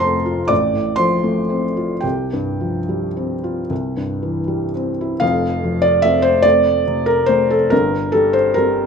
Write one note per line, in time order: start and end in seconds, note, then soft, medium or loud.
0.00 0.46 F1 medium
0.00 0.47 F2 medium
0.00 0.53 C3 medium
0.00 0.53 F3 medium
0.00 0.16 A3 medium
0.00 0.40 C4 medium
0.00 0.53 A4 medium
0.00 0.53 A#4 medium
0.00 0.46 C5 medium
0.00 0.53 A5 loud
0.00 0.53 A#5 medium
0.00 0.49 C6 medium
0.26 0.50 F4 medium
0.48 1.99 A1 medium
0.48 0.95 D5 medium
0.48 0.98 D6 loud
0.73 1.13 A2 medium
0.96 1.39 F3 medium
0.96 1.99 C5 medium
0.96 2.02 C6 loud
1.24 1.65 A3 medium
1.50 1.92 C4 medium
1.77 2.04 F4 medium
2.01 3.67 C2 medium
2.01 4.70 G4 medium
2.01 4.73 G5 medium
2.33 2.78 G2 medium
2.61 3.06 F3 soft
2.89 3.33 G3 soft
3.17 3.60 C4 medium
3.44 3.70 F4 medium
3.70 5.18 C2 medium
3.97 4.38 G2 soft
4.23 4.64 E3 medium
4.48 4.90 G3 soft
4.75 5.14 C4 medium
5.01 5.23 E4 medium
5.20 7.67 F1 medium
5.20 7.67 F2 medium
5.20 5.83 F5 loud
5.64 6.28 F3 medium
5.82 6.03 D5 loud
6.02 6.40 A3 medium
6.02 6.41 C4 medium
6.02 6.23 E5 loud
6.22 6.43 C5 loud
6.42 6.82 A3 medium
6.42 6.82 C4 medium
6.42 7.06 D5 loud
6.87 7.55 C3 medium
7.06 7.28 A#4 loud
7.26 7.67 A3 medium
7.26 7.68 C4 medium
7.26 7.49 C5 loud
7.50 7.71 A4 medium
7.70 8.86 G1 medium
7.70 8.86 G2 medium
7.70 8.13 A#4 loud
8.12 8.55 G3 medium
8.12 8.34 A4 loud
8.33 8.54 C5 loud
8.54 8.86 G3 medium
8.54 8.86 C4 medium
8.54 8.86 A#4 loud